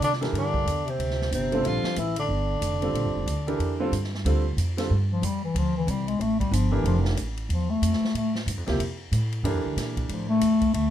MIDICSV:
0, 0, Header, 1, 7, 480
1, 0, Start_track
1, 0, Tempo, 325203
1, 502, Time_signature, 4, 2, 24, 8
1, 16091, End_track
2, 0, Start_track
2, 0, Title_t, "Grand piano"
2, 0, Program_c, 0, 0
2, 311, Note_on_c, 0, 52, 58
2, 311, Note_on_c, 0, 69, 56
2, 317, Note_on_c, 0, 62, 52
2, 324, Note_on_c, 0, 67, 51
2, 332, Note_on_c, 0, 70, 60
2, 942, Note_off_c, 0, 52, 0
2, 942, Note_off_c, 0, 69, 0
2, 945, Note_off_c, 0, 62, 0
2, 949, Note_off_c, 0, 67, 0
2, 952, Note_off_c, 0, 70, 0
2, 2241, Note_on_c, 0, 50, 60
2, 2246, Note_on_c, 0, 55, 51
2, 2251, Note_on_c, 0, 60, 61
2, 2258, Note_on_c, 0, 65, 51
2, 2258, Note_on_c, 0, 69, 69
2, 2868, Note_off_c, 0, 50, 0
2, 2871, Note_off_c, 0, 55, 0
2, 2873, Note_off_c, 0, 60, 0
2, 2877, Note_off_c, 0, 65, 0
2, 2877, Note_off_c, 0, 69, 0
2, 4159, Note_on_c, 0, 50, 49
2, 4165, Note_on_c, 0, 60, 49
2, 4166, Note_on_c, 0, 55, 43
2, 4177, Note_on_c, 0, 65, 48
2, 4179, Note_on_c, 0, 69, 62
2, 4789, Note_off_c, 0, 50, 0
2, 4792, Note_off_c, 0, 60, 0
2, 4793, Note_off_c, 0, 55, 0
2, 4798, Note_off_c, 0, 65, 0
2, 4799, Note_off_c, 0, 69, 0
2, 5124, Note_on_c, 0, 52, 54
2, 5130, Note_on_c, 0, 69, 51
2, 5135, Note_on_c, 0, 67, 55
2, 5137, Note_on_c, 0, 62, 51
2, 5140, Note_on_c, 0, 70, 66
2, 5574, Note_off_c, 0, 52, 0
2, 5577, Note_off_c, 0, 69, 0
2, 5580, Note_off_c, 0, 67, 0
2, 5581, Note_off_c, 0, 62, 0
2, 5582, Note_off_c, 0, 70, 0
2, 5602, Note_on_c, 0, 50, 71
2, 5606, Note_on_c, 0, 55, 60
2, 5609, Note_on_c, 0, 60, 67
2, 5615, Note_on_c, 0, 65, 64
2, 5620, Note_on_c, 0, 69, 70
2, 5770, Note_off_c, 0, 50, 0
2, 5772, Note_off_c, 0, 55, 0
2, 5773, Note_off_c, 0, 60, 0
2, 5776, Note_off_c, 0, 65, 0
2, 5779, Note_off_c, 0, 69, 0
2, 6274, Note_on_c, 0, 50, 58
2, 6276, Note_on_c, 0, 55, 54
2, 6284, Note_on_c, 0, 60, 54
2, 6288, Note_on_c, 0, 65, 56
2, 6295, Note_on_c, 0, 69, 61
2, 6537, Note_off_c, 0, 50, 0
2, 6538, Note_off_c, 0, 55, 0
2, 6542, Note_off_c, 0, 60, 0
2, 6544, Note_off_c, 0, 65, 0
2, 6547, Note_off_c, 0, 69, 0
2, 7043, Note_on_c, 0, 50, 61
2, 7049, Note_on_c, 0, 60, 49
2, 7052, Note_on_c, 0, 55, 49
2, 7062, Note_on_c, 0, 65, 55
2, 7069, Note_on_c, 0, 69, 62
2, 7211, Note_off_c, 0, 50, 0
2, 7214, Note_off_c, 0, 60, 0
2, 7216, Note_off_c, 0, 55, 0
2, 7221, Note_off_c, 0, 65, 0
2, 7224, Note_off_c, 0, 69, 0
2, 9912, Note_on_c, 0, 52, 62
2, 9915, Note_on_c, 0, 69, 54
2, 9919, Note_on_c, 0, 62, 57
2, 9925, Note_on_c, 0, 67, 51
2, 9928, Note_on_c, 0, 70, 66
2, 10547, Note_off_c, 0, 52, 0
2, 10549, Note_off_c, 0, 69, 0
2, 10551, Note_off_c, 0, 62, 0
2, 10554, Note_off_c, 0, 67, 0
2, 10555, Note_off_c, 0, 70, 0
2, 12788, Note_on_c, 0, 48, 56
2, 12794, Note_on_c, 0, 53, 54
2, 12799, Note_on_c, 0, 58, 57
2, 12809, Note_on_c, 0, 64, 60
2, 12817, Note_on_c, 0, 67, 70
2, 12962, Note_off_c, 0, 48, 0
2, 12965, Note_off_c, 0, 53, 0
2, 12967, Note_off_c, 0, 58, 0
2, 12972, Note_off_c, 0, 64, 0
2, 12976, Note_off_c, 0, 67, 0
2, 13934, Note_on_c, 0, 52, 60
2, 13935, Note_on_c, 0, 69, 58
2, 13941, Note_on_c, 0, 62, 62
2, 13944, Note_on_c, 0, 67, 60
2, 13954, Note_on_c, 0, 70, 64
2, 15264, Note_off_c, 0, 52, 0
2, 15265, Note_off_c, 0, 69, 0
2, 15267, Note_off_c, 0, 62, 0
2, 15269, Note_off_c, 0, 67, 0
2, 15274, Note_off_c, 0, 70, 0
2, 16091, End_track
3, 0, Start_track
3, 0, Title_t, "Tenor saxophone"
3, 0, Program_c, 1, 66
3, 57, Note_on_c, 1, 62, 89
3, 182, Note_off_c, 1, 62, 0
3, 554, Note_on_c, 1, 62, 92
3, 1317, Note_on_c, 1, 60, 73
3, 1339, Note_off_c, 1, 62, 0
3, 1963, Note_off_c, 1, 60, 0
3, 1979, Note_on_c, 1, 60, 77
3, 2453, Note_on_c, 1, 65, 83
3, 2475, Note_off_c, 1, 60, 0
3, 2934, Note_on_c, 1, 64, 76
3, 2956, Note_off_c, 1, 65, 0
3, 3213, Note_off_c, 1, 64, 0
3, 3235, Note_on_c, 1, 62, 75
3, 5748, Note_off_c, 1, 62, 0
3, 16091, End_track
4, 0, Start_track
4, 0, Title_t, "Bass clarinet"
4, 0, Program_c, 2, 71
4, 10, Note_on_c, 2, 50, 67
4, 145, Note_off_c, 2, 50, 0
4, 491, Note_on_c, 2, 50, 76
4, 1256, Note_on_c, 2, 48, 65
4, 1278, Note_off_c, 2, 50, 0
4, 1929, Note_off_c, 2, 48, 0
4, 1938, Note_on_c, 2, 48, 64
4, 2445, Note_on_c, 2, 53, 73
4, 2467, Note_off_c, 2, 48, 0
4, 2913, Note_on_c, 2, 52, 70
4, 2936, Note_off_c, 2, 53, 0
4, 3203, Note_off_c, 2, 52, 0
4, 3212, Note_on_c, 2, 50, 63
4, 5736, Note_off_c, 2, 50, 0
4, 7562, Note_on_c, 2, 53, 71
4, 7747, Note_on_c, 2, 55, 73
4, 7769, Note_off_c, 2, 53, 0
4, 8023, Note_off_c, 2, 55, 0
4, 8031, Note_on_c, 2, 52, 71
4, 8224, Note_on_c, 2, 53, 79
4, 8246, Note_off_c, 2, 52, 0
4, 8502, Note_off_c, 2, 53, 0
4, 8512, Note_on_c, 2, 52, 80
4, 8709, Note_on_c, 2, 55, 70
4, 8731, Note_off_c, 2, 52, 0
4, 8979, Note_on_c, 2, 56, 67
4, 9001, Note_off_c, 2, 55, 0
4, 9159, Note_on_c, 2, 57, 76
4, 9182, Note_off_c, 2, 56, 0
4, 9426, Note_off_c, 2, 57, 0
4, 9435, Note_on_c, 2, 55, 77
4, 9654, Note_on_c, 2, 53, 78
4, 9677, Note_off_c, 2, 55, 0
4, 9937, Note_off_c, 2, 53, 0
4, 9949, Note_on_c, 2, 52, 65
4, 10111, Note_off_c, 2, 52, 0
4, 10135, Note_on_c, 2, 53, 74
4, 10304, Note_off_c, 2, 53, 0
4, 11097, Note_on_c, 2, 53, 66
4, 11363, Note_on_c, 2, 57, 75
4, 11385, Note_off_c, 2, 53, 0
4, 12029, Note_off_c, 2, 57, 0
4, 12046, Note_on_c, 2, 57, 70
4, 12311, Note_off_c, 2, 57, 0
4, 14899, Note_on_c, 2, 53, 57
4, 15173, Note_off_c, 2, 53, 0
4, 15186, Note_on_c, 2, 57, 91
4, 15807, Note_off_c, 2, 57, 0
4, 15852, Note_on_c, 2, 57, 78
4, 16091, Note_off_c, 2, 57, 0
4, 16091, End_track
5, 0, Start_track
5, 0, Title_t, "Upright bass"
5, 0, Program_c, 3, 32
5, 0, Note_on_c, 3, 48, 74
5, 472, Note_off_c, 3, 48, 0
5, 481, Note_on_c, 3, 43, 80
5, 956, Note_off_c, 3, 43, 0
5, 965, Note_on_c, 3, 40, 74
5, 1439, Note_off_c, 3, 40, 0
5, 1459, Note_on_c, 3, 38, 72
5, 1926, Note_off_c, 3, 38, 0
5, 1937, Note_on_c, 3, 31, 79
5, 2405, Note_off_c, 3, 31, 0
5, 2416, Note_on_c, 3, 34, 83
5, 2693, Note_off_c, 3, 34, 0
5, 2903, Note_on_c, 3, 33, 76
5, 3369, Note_off_c, 3, 33, 0
5, 3375, Note_on_c, 3, 31, 73
5, 3846, Note_off_c, 3, 31, 0
5, 3859, Note_on_c, 3, 29, 75
5, 4325, Note_off_c, 3, 29, 0
5, 4334, Note_on_c, 3, 34, 71
5, 4501, Note_off_c, 3, 34, 0
5, 4501, Note_on_c, 3, 31, 50
5, 4656, Note_off_c, 3, 31, 0
5, 4665, Note_on_c, 3, 29, 53
5, 4803, Note_off_c, 3, 29, 0
5, 4812, Note_on_c, 3, 38, 80
5, 5286, Note_off_c, 3, 38, 0
5, 5299, Note_on_c, 3, 41, 69
5, 5770, Note_off_c, 3, 41, 0
5, 5782, Note_on_c, 3, 43, 83
5, 6252, Note_off_c, 3, 43, 0
5, 6268, Note_on_c, 3, 38, 84
5, 6735, Note_off_c, 3, 38, 0
5, 6743, Note_on_c, 3, 41, 82
5, 7212, Note_off_c, 3, 41, 0
5, 7235, Note_on_c, 3, 43, 83
5, 7699, Note_off_c, 3, 43, 0
5, 7708, Note_on_c, 3, 41, 82
5, 8175, Note_off_c, 3, 41, 0
5, 8186, Note_on_c, 3, 38, 81
5, 8655, Note_off_c, 3, 38, 0
5, 8662, Note_on_c, 3, 36, 89
5, 9132, Note_off_c, 3, 36, 0
5, 9142, Note_on_c, 3, 33, 75
5, 9606, Note_off_c, 3, 33, 0
5, 9615, Note_on_c, 3, 31, 91
5, 10089, Note_off_c, 3, 31, 0
5, 10096, Note_on_c, 3, 29, 86
5, 10569, Note_off_c, 3, 29, 0
5, 10580, Note_on_c, 3, 33, 79
5, 11050, Note_off_c, 3, 33, 0
5, 11057, Note_on_c, 3, 40, 70
5, 11528, Note_off_c, 3, 40, 0
5, 11537, Note_on_c, 3, 41, 85
5, 11816, Note_off_c, 3, 41, 0
5, 12015, Note_on_c, 3, 45, 78
5, 12481, Note_off_c, 3, 45, 0
5, 12490, Note_on_c, 3, 43, 81
5, 12655, Note_off_c, 3, 43, 0
5, 12655, Note_on_c, 3, 41, 55
5, 12807, Note_off_c, 3, 41, 0
5, 12816, Note_on_c, 3, 38, 61
5, 12963, Note_off_c, 3, 38, 0
5, 12971, Note_on_c, 3, 41, 69
5, 13443, Note_off_c, 3, 41, 0
5, 13455, Note_on_c, 3, 45, 83
5, 13910, Note_off_c, 3, 45, 0
5, 13919, Note_on_c, 3, 43, 77
5, 14089, Note_off_c, 3, 43, 0
5, 14089, Note_on_c, 3, 41, 54
5, 14237, Note_off_c, 3, 41, 0
5, 14246, Note_on_c, 3, 38, 64
5, 14403, Note_off_c, 3, 38, 0
5, 14409, Note_on_c, 3, 46, 76
5, 14880, Note_off_c, 3, 46, 0
5, 14894, Note_on_c, 3, 45, 80
5, 15358, Note_off_c, 3, 45, 0
5, 15367, Note_on_c, 3, 40, 79
5, 15838, Note_off_c, 3, 40, 0
5, 15845, Note_on_c, 3, 38, 82
5, 16091, Note_off_c, 3, 38, 0
5, 16091, End_track
6, 0, Start_track
6, 0, Title_t, "Muted upright bass strokes"
6, 2714, Note_on_c, 9, 29, 33
6, 2862, Note_off_c, 9, 29, 0
6, 11822, Note_on_c, 9, 29, 37
6, 11970, Note_off_c, 9, 29, 0
6, 16091, End_track
7, 0, Start_track
7, 0, Title_t, "Drums"
7, 32, Note_on_c, 9, 44, 55
7, 32, Note_on_c, 9, 51, 56
7, 179, Note_off_c, 9, 44, 0
7, 179, Note_off_c, 9, 51, 0
7, 191, Note_on_c, 9, 38, 25
7, 331, Note_on_c, 9, 51, 43
7, 339, Note_off_c, 9, 38, 0
7, 341, Note_on_c, 9, 38, 35
7, 479, Note_off_c, 9, 51, 0
7, 489, Note_off_c, 9, 38, 0
7, 518, Note_on_c, 9, 51, 50
7, 666, Note_off_c, 9, 51, 0
7, 796, Note_on_c, 9, 36, 57
7, 943, Note_off_c, 9, 36, 0
7, 995, Note_on_c, 9, 44, 43
7, 995, Note_on_c, 9, 51, 52
7, 1143, Note_off_c, 9, 44, 0
7, 1143, Note_off_c, 9, 51, 0
7, 1293, Note_on_c, 9, 51, 37
7, 1441, Note_off_c, 9, 51, 0
7, 1472, Note_on_c, 9, 51, 53
7, 1619, Note_off_c, 9, 51, 0
7, 1629, Note_on_c, 9, 38, 26
7, 1776, Note_off_c, 9, 38, 0
7, 1791, Note_on_c, 9, 38, 39
7, 1939, Note_off_c, 9, 38, 0
7, 1954, Note_on_c, 9, 44, 59
7, 1954, Note_on_c, 9, 51, 60
7, 2102, Note_off_c, 9, 44, 0
7, 2102, Note_off_c, 9, 51, 0
7, 2245, Note_on_c, 9, 51, 42
7, 2393, Note_off_c, 9, 51, 0
7, 2432, Note_on_c, 9, 51, 47
7, 2580, Note_off_c, 9, 51, 0
7, 2713, Note_on_c, 9, 38, 49
7, 2861, Note_off_c, 9, 38, 0
7, 2897, Note_on_c, 9, 44, 52
7, 2897, Note_on_c, 9, 51, 59
7, 3045, Note_off_c, 9, 44, 0
7, 3045, Note_off_c, 9, 51, 0
7, 3191, Note_on_c, 9, 51, 57
7, 3339, Note_off_c, 9, 51, 0
7, 3865, Note_on_c, 9, 44, 60
7, 3865, Note_on_c, 9, 51, 64
7, 4013, Note_off_c, 9, 44, 0
7, 4013, Note_off_c, 9, 51, 0
7, 4162, Note_on_c, 9, 51, 36
7, 4310, Note_off_c, 9, 51, 0
7, 4358, Note_on_c, 9, 51, 52
7, 4506, Note_off_c, 9, 51, 0
7, 4834, Note_on_c, 9, 44, 46
7, 4834, Note_on_c, 9, 51, 61
7, 4981, Note_off_c, 9, 44, 0
7, 4981, Note_off_c, 9, 51, 0
7, 5135, Note_on_c, 9, 51, 37
7, 5282, Note_off_c, 9, 51, 0
7, 5314, Note_on_c, 9, 51, 48
7, 5462, Note_off_c, 9, 51, 0
7, 5798, Note_on_c, 9, 44, 57
7, 5798, Note_on_c, 9, 51, 55
7, 5946, Note_off_c, 9, 44, 0
7, 5946, Note_off_c, 9, 51, 0
7, 5961, Note_on_c, 9, 38, 26
7, 6108, Note_off_c, 9, 38, 0
7, 6117, Note_on_c, 9, 38, 36
7, 6264, Note_off_c, 9, 38, 0
7, 6284, Note_on_c, 9, 51, 60
7, 6432, Note_off_c, 9, 51, 0
7, 6760, Note_on_c, 9, 44, 52
7, 6760, Note_on_c, 9, 51, 54
7, 6907, Note_off_c, 9, 44, 0
7, 6907, Note_off_c, 9, 51, 0
7, 7054, Note_on_c, 9, 38, 36
7, 7057, Note_on_c, 9, 51, 53
7, 7201, Note_off_c, 9, 38, 0
7, 7204, Note_off_c, 9, 51, 0
7, 7720, Note_on_c, 9, 44, 57
7, 7720, Note_on_c, 9, 51, 65
7, 7868, Note_off_c, 9, 44, 0
7, 7868, Note_off_c, 9, 51, 0
7, 8201, Note_on_c, 9, 51, 63
7, 8349, Note_off_c, 9, 51, 0
7, 8677, Note_on_c, 9, 44, 58
7, 8677, Note_on_c, 9, 51, 55
7, 8824, Note_off_c, 9, 44, 0
7, 8824, Note_off_c, 9, 51, 0
7, 8973, Note_on_c, 9, 51, 39
7, 9121, Note_off_c, 9, 51, 0
7, 9162, Note_on_c, 9, 51, 47
7, 9310, Note_off_c, 9, 51, 0
7, 9453, Note_on_c, 9, 36, 54
7, 9460, Note_on_c, 9, 51, 42
7, 9600, Note_off_c, 9, 36, 0
7, 9607, Note_off_c, 9, 51, 0
7, 9643, Note_on_c, 9, 44, 67
7, 9643, Note_on_c, 9, 51, 66
7, 9791, Note_off_c, 9, 44, 0
7, 9791, Note_off_c, 9, 51, 0
7, 10118, Note_on_c, 9, 51, 52
7, 10265, Note_off_c, 9, 51, 0
7, 10403, Note_on_c, 9, 38, 48
7, 10550, Note_off_c, 9, 38, 0
7, 10586, Note_on_c, 9, 44, 47
7, 10586, Note_on_c, 9, 51, 58
7, 10734, Note_off_c, 9, 44, 0
7, 10734, Note_off_c, 9, 51, 0
7, 10884, Note_on_c, 9, 51, 40
7, 11032, Note_off_c, 9, 51, 0
7, 11069, Note_on_c, 9, 51, 51
7, 11216, Note_off_c, 9, 51, 0
7, 11552, Note_on_c, 9, 44, 58
7, 11552, Note_on_c, 9, 51, 69
7, 11700, Note_off_c, 9, 44, 0
7, 11700, Note_off_c, 9, 51, 0
7, 11703, Note_on_c, 9, 38, 28
7, 11851, Note_off_c, 9, 38, 0
7, 11874, Note_on_c, 9, 38, 40
7, 12021, Note_off_c, 9, 38, 0
7, 12032, Note_on_c, 9, 51, 61
7, 12180, Note_off_c, 9, 51, 0
7, 12329, Note_on_c, 9, 38, 46
7, 12476, Note_off_c, 9, 38, 0
7, 12512, Note_on_c, 9, 44, 53
7, 12512, Note_on_c, 9, 51, 66
7, 12660, Note_off_c, 9, 44, 0
7, 12660, Note_off_c, 9, 51, 0
7, 12800, Note_on_c, 9, 38, 34
7, 12803, Note_on_c, 9, 51, 37
7, 12948, Note_off_c, 9, 38, 0
7, 12951, Note_off_c, 9, 51, 0
7, 12988, Note_on_c, 9, 51, 64
7, 13136, Note_off_c, 9, 51, 0
7, 13469, Note_on_c, 9, 44, 53
7, 13469, Note_on_c, 9, 51, 64
7, 13616, Note_off_c, 9, 44, 0
7, 13616, Note_off_c, 9, 51, 0
7, 13763, Note_on_c, 9, 51, 44
7, 13910, Note_off_c, 9, 51, 0
7, 13947, Note_on_c, 9, 51, 60
7, 14094, Note_off_c, 9, 51, 0
7, 14427, Note_on_c, 9, 38, 34
7, 14430, Note_on_c, 9, 44, 51
7, 14430, Note_on_c, 9, 51, 63
7, 14574, Note_off_c, 9, 38, 0
7, 14577, Note_off_c, 9, 44, 0
7, 14577, Note_off_c, 9, 51, 0
7, 14714, Note_on_c, 9, 36, 46
7, 14717, Note_on_c, 9, 51, 41
7, 14861, Note_off_c, 9, 36, 0
7, 14865, Note_off_c, 9, 51, 0
7, 14897, Note_on_c, 9, 51, 50
7, 15045, Note_off_c, 9, 51, 0
7, 15370, Note_on_c, 9, 44, 49
7, 15370, Note_on_c, 9, 51, 67
7, 15518, Note_off_c, 9, 44, 0
7, 15518, Note_off_c, 9, 51, 0
7, 15667, Note_on_c, 9, 51, 45
7, 15670, Note_on_c, 9, 36, 53
7, 15815, Note_off_c, 9, 51, 0
7, 15817, Note_off_c, 9, 36, 0
7, 15856, Note_on_c, 9, 51, 60
7, 16004, Note_off_c, 9, 51, 0
7, 16091, End_track
0, 0, End_of_file